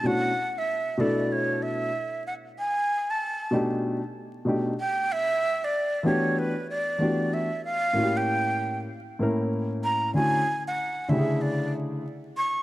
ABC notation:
X:1
M:4/4
L:1/16
Q:"Swing 16ths" 1/4=95
K:Emix
V:1 name="Flute"
f3 e3 d2 c2 e4 f2 | g3 a4 z6 z =g2 | e3 d3 c2 B2 d4 e2 | ^e3 =g4 z6 z _b2 |
g3 f3 e2 d2 z4 c'2 |]
V:2 name="Grand piano"
[B,,A,CDEF]2 z4 [B,,A,B,DEA]6 z4 | z6 [B,,A,D^D=G]2 z4 [B,,A,=D^DG]2 z2 | z6 [E,A,B,DF=G]2 z4 [E,A,B,DFG]2 z2 | z2 [A,,_B,CEF=G]6 z2 [A,,B,CE_B]6 |
[D,A,CEF]2 z4 [C,D,A,E=G^G]6 z4 |]